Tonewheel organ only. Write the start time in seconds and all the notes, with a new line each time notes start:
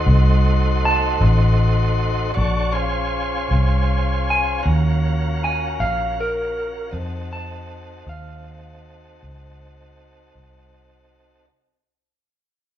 Already playing: A3 D#4 F#4 C5
2.34 D4 F#4 A4 C#5
2.72 C#4 F4 G#4 C5
4.62 C#4 F4 F#4 A#4
6.91 C4 D#4 F#4 A4